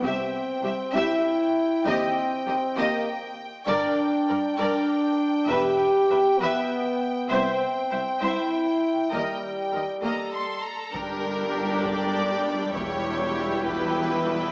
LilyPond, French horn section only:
\new Staff \with { instrumentName = "French horn section" } { \time 6/8 \key g \minor \tempo 4. = 66 << { c'4. e'4. | c'4. bes8 r4 | d'4. d'4. | g'4. b4. |
c'4. e'4. | g2~ g8 r8 | d'2. | e'2. | } \\ { r2. | r2. | r2. | r2. |
r2. | r2. | g2.~ | g2. | } >> }